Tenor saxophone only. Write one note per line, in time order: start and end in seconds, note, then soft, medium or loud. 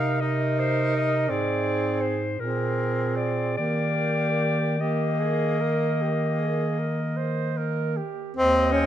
0.00 0.18 D#4 medium
0.22 1.31 D#4 medium
1.29 2.23 C4 soft
2.40 3.56 C4 soft
3.58 4.77 A#3 soft
4.80 7.99 A#3 soft
8.37 8.74 C4 medium
8.72 8.86 C#4 medium